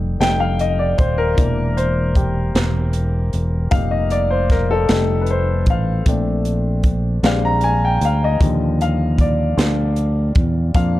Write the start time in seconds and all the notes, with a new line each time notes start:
Already playing: F1 G3 A3 D#4
0.20 F1 G3 A3 D#4 G5, snare, closed hi-hat
0.40 F5
0.59 D#5, closed hi-hat
0.79 D5
0.98 D#1 C5, kick, closed hi-hat
1.18 A#4
1.36 E1 E3 A#3 D4, kick, closed hi-hat
1.77 C5, closed hi-hat
2.15 G4, kick, closed hi-hat
2.55 E1, snare, closed hi-hat
2.93 closed hi-hat
3.33 E1, closed hi-hat
3.71 F1 G3 A#3 D#4 F5, kick, closed hi-hat
3.91 D#5
4.10 D5, closed hi-hat
4.31 C5
4.50 A#4, kick, snare, closed hi-hat
4.71 A4
4.89 F1 G3 A3 D#4, snare, closed hi-hat
5.21 B4
5.26 closed hi-hat
5.31 C5
5.66 A1 F5, kick, closed hi-hat
6.06 A#1 A3 C4 D4, kick, closed hi-hat
6.45 closed hi-hat
6.83 kick, closed hi-hat
7.23 A#1 G3 G#3 C4 D4 F5, snare, closed hi-hat
7.45 A#5
7.61 G#5, closed hi-hat
7.85 G5
8.01 D2 F5, closed hi-hat
8.24 D#5
8.40 D#2 D3 F3 G3, kick, closed hi-hat
8.81 F5, closed hi-hat
9.18 D5, kick, closed hi-hat
9.57 D2, snare, closed hi-hat
9.96 closed hi-hat
10.35 E2, kick, closed hi-hat
10.74 F2 F3 A#3 D4 F5, kick, closed hi-hat